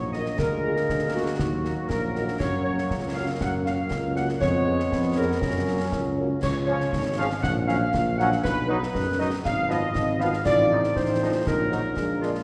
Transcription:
Already playing: A#1 F#3 A#3 C#5
0.13 F#3 D#4 A#4 D#5, snare
0.26 snare
0.37 D2 G#3 A#3 A#4, concert bass drum, snare
0.63 A#3 F4 G#4
0.76 snare
0.88 D2, concert bass drum, snare
1.14 A#3 F4 F#4 G#4
1.38 D#2 F#3, concert bass drum, snare
1.65 A#3 D#4 F#4, snare
1.88 A#1 A#4, concert bass drum, snare
2.15 A#3 D#4 F#4, snare
2.28 snare
2.39 F#2 F#3 A#3 C#5, concert bass drum, snare, crash
2.63 A#3 C#4 F#4 C#5
2.78 snare
2.90 C#2, concert bass drum, snare
3.14 A#3 C#4 F#4 F5
3.40 F#2 F#5, concert bass drum, snare
3.66 A#3 C#4 F#4 F5, snare
3.91 C#2, concert bass drum, snare
4.15 A#3 C#4 F#4 F#5, snare
4.29 snare
4.41 F2 G#3 B3 C#5, concert bass drum, snare
4.67 B3 C#4 G#4
4.80 snare
4.92 F2, concert bass drum, snare
5.17 B3 C#4 G#4 A#4
5.41 F#2 F#3 C#4, concert bass drum, snare
5.67 A#3 C#4 F#4
5.92 C#2, concert bass drum, snare
6.18 A#3 C#4 F#4
6.42 C#2 C#5, concert bass drum, snare, crash
6.67 F3 G#3 C#4 F4 C#5
6.80 snare
6.93 G#1, concert bass drum, snare
7.18 F3 G#3 C#4 F4 F5
7.42 A#1 F#5, concert bass drum, snare
7.67 F#3 C#4 F#4 F5, snare
7.94 A#1, concert bass drum, snare
8.18 F#3 C#4 F#4 F#5, snare
8.32 snare
8.43 B1 B4, concert bass drum, snare
8.68 F#3 B3 D#4 B4
8.83 snare
8.94 F#2, concert bass drum, snare
9.18 F#3 B3 D#4 D#5
9.44 G#1 F5, concert bass drum, snare
9.69 F3 B3 F4 D#5, snare
9.95 G#1, concert bass drum, snare
10.19 F3 B3 F4 F5, snare
10.33 snare
10.45 A1 F3 C4 D#4 D5, concert bass drum, snare, crash
10.72 F3 D#4
10.84 snare
10.96 A1 F3 C4 D#4 C5, concert bass drum, snare
11.22 F3 D#4
11.47 A#1 F#3 D#4 A#4, concert bass drum, snare
11.71 F#3 D#4, snare
11.97 A#1 G#3 A#3 D4, concert bass drum, snare
12.21 G#3 D4 F4, snare
12.35 snare

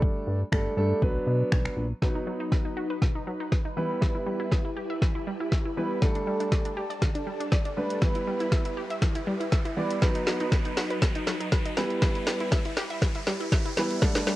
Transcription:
Already playing: G3 A3 D4 A4
0.02 kick
0.27 G2
0.52 G1 G3 A3 D4 A4, finger snap, kick
0.77 G2 G3 A3 D4 A4
1.02 B1 F#3 B3 D4 B4, kick
1.27 B2
1.52 B1, finger snap, kick
1.65 finger snap
1.77 A#1
2.02 B2 F#3 B3 D#4 B4, kick, snare, riser
2.15 D#4
2.27 F#3
2.40 D#4
2.52 B4, kick, snare
2.65 D#4
2.77 F#4
2.90 B4
3.02 B2, kick, snare
3.15 D#4
3.27 F#3
3.40 D#4
3.52 B4, kick, snare
3.65 D#4
3.77 E3 G3 B3 E4 B4
4.02 E3, kick, snare
4.15 E4
4.27 G3
4.40 E4
4.52 E5, kick, snare
4.65 E4
4.77 G4
4.90 E5
5.02 E3, kick, snare
5.15 E4
5.27 G3
5.40 E4
5.52 E5, kick, snare
5.65 E4
5.77 E3 G3 B3 E4 B4
6.01 D3 G3 A3 D4 A4, kick, snare, closed hi-hat
6.15 D4, closed hi-hat
6.27 G3
6.40 D4, closed hi-hat
6.52 D5, kick, snare, closed hi-hat
6.65 D4, closed hi-hat
6.77 G4
6.90 D5, closed hi-hat
7.02 D3, kick, snare, closed hi-hat
7.15 D4, closed hi-hat
7.27 G3
7.40 D4, closed hi-hat
7.52 D5, kick, snare, closed hi-hat
7.65 D4, closed hi-hat
7.77 D3 G3 A3 D4 B4
7.90 closed hi-hat
8.02 E3 G3 B3 E4 B4, kick, snare, closed hi-hat
8.15 E4, closed hi-hat
8.27 G3
8.40 E4, closed hi-hat
8.52 E5, kick, snare, closed hi-hat
8.65 E4, closed hi-hat
8.77 G4
8.90 E5, closed hi-hat
9.02 E3, kick, snare, closed hi-hat
9.15 E4, closed hi-hat
9.27 G3
9.40 E4, closed hi-hat
9.52 E5, kick, snare, closed hi-hat
9.65 E4, closed hi-hat
9.77 E3 G3 B3 E4 D5
9.91 closed hi-hat
10.02 B2 F#3 B3 D#4 B4, kick, snare, closed hi-hat
10.15 D#4, closed hi-hat
10.27 F#3, snare, open hi-hat
10.40 D#4, closed hi-hat
10.52 B4, kick, snare, closed hi-hat
10.65 D#4, closed hi-hat
10.77 F#4, snare, open hi-hat
10.90 B4, closed hi-hat
11.02 B2, kick, snare, closed hi-hat
11.15 D#4, closed hi-hat
11.27 F#3, snare, open hi-hat
11.40 D#4, closed hi-hat
11.52 B4, kick, snare, closed hi-hat
11.65 D#4, closed hi-hat
11.77 E3 G3 B3 E4 B4, snare, open hi-hat
11.90 closed hi-hat
12.02 E3, kick, snare, closed hi-hat
12.15 E4, closed hi-hat
12.27 G3, snare, open hi-hat
12.40 E4, closed hi-hat
12.52 E5, kick, snare, closed hi-hat
12.65 E4, closed hi-hat
12.77 G4, snare, open hi-hat
12.90 E5, closed hi-hat
13.02 E3, kick, snare, closed hi-hat
13.15 E4, closed hi-hat
13.27 G3, snare, open hi-hat
13.40 E4, closed hi-hat
13.52 E5, kick, snare, closed hi-hat
13.65 E4, closed hi-hat
13.77 E3 G3 B3 E4 B4, snare, open hi-hat
13.91 closed hi-hat
14.02 D3 G3 A3 D4 A4, kick, snare, closed hi-hat, shaker
14.15 D4, snare, closed hi-hat, shaker
14.27 G3, snare, open hi-hat, shaker

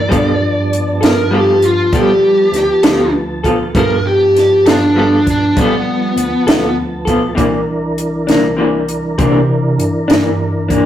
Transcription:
Already playing: D5
0.09 G2 F#3 G3 B3 C4 F4 A4 A#4, kick, closed hi-hat
0.41 F3 B3 A5
0.73 closed hi-hat
1.01 G2 B3 F4 A4 A#4, snare, closed hi-hat
1.31 G3 B3 F4 G4 A4
1.62 F4, closed hi-hat
1.93 G3 B3 F4 G4 A4, kick, closed hi-hat
2.52 D2, snare, closed hi-hat
2.83 D2 B3 F4 A4, snare, closed hi-hat
3.44 B3 F4 A4, kick, closed hi-hat
3.74 G2 F3 G3 B3 F4 A4 A#4 A5, kick, closed hi-hat
4.07 G4
4.36 snare, closed hi-hat
4.66 G2 B3 D4 F4 A4, snare, closed hi-hat
4.96 G3 B3 F4 A4
5.27 D4, kick, closed hi-hat
5.57 G3 B3 F4 A4, kick, closed hi-hat
6.16 D2, closed hi-hat
6.46 D2 B3 F4 A4, snare, closed hi-hat
7.05 B3 F4 A4, kick, closed hi-hat
7.35 C2 C3 E3 A#3 D4 A#4, kick, closed hi-hat
7.98 closed hi-hat
8.26 C2 E3 A#3 D4, snare, closed hi-hat
8.57 C3 E3 A#3 D4
8.88 closed hi-hat
9.18 C3 E3 A#3 D4, kick, closed hi-hat
9.78 G2, closed hi-hat
10.08 G2 E3 A#3 D4, snare, closed hi-hat
10.69 E3 A#3 D4, kick, closed hi-hat

